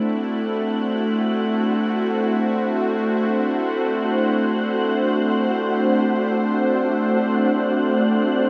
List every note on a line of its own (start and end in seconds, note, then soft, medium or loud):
0.00 8.49 A3 medium
0.00 8.49 C4 medium
0.00 8.49 D4 medium
0.00 8.49 E4 medium
0.00 8.49 F#4 medium
0.00 8.49 F#5 medium
0.56 8.49 C5 medium